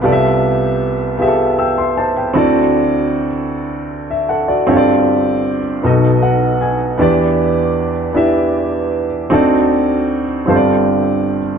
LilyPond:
<<
  \new Staff \with { instrumentName = "Upright piano" } { \time 6/8 \key d \dorian \tempo 4. = 52 << { r2 <g'' e'''>16 <e'' c'''>16 <c'' a''>16 <b' g''>16~ | <b' g''>16 r2 e''16 <a' fis''>16 <fis' d''>16~ | <fis' d''>16 r4. r16 fis''8 aes''8 | r2. |
r2. | } \\ { <b f' g' a' d'' e''>4 r8 <b f' g' aes' a' e''>4 r8 | <c' e' fis' a' d''>4 r2 | <c' f' g' a' des'' d''>4 r8 <b dis' fis' a' dis''>4 r8 | <b d' e' g' d''>4 r8 <b d' e' g' e''>4 r8 |
<c' ees' fis' a' d''>4 r8 <c' f' g' a' c'' d''>4 r8 | } >> }
  \new Staff \with { instrumentName = "Upright piano" } { \clef bass \time 6/8 \key d \dorian <c, c>2. | <d, d>2. | <g,, g,>4. <b,, b,>4. | <e, e>2. |
<d, d>4. <g,, g,>4. | }
>>